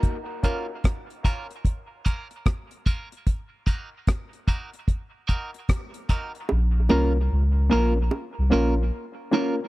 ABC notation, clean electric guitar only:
X:1
M:4/4
L:1/8
Q:"Swing 16ths" 1/4=74
K:Bbm
V:1 name="Clean electric guitar"
z [B,DFB] z [B,DFB] z [B,DFB] z [B,DFB] | z [B,EGB] z [B,EGB] z [B,EGB] z [B,EGB] | z [B,DFB] z [B,DFB] z [B,DFB] z [B,DFB] |]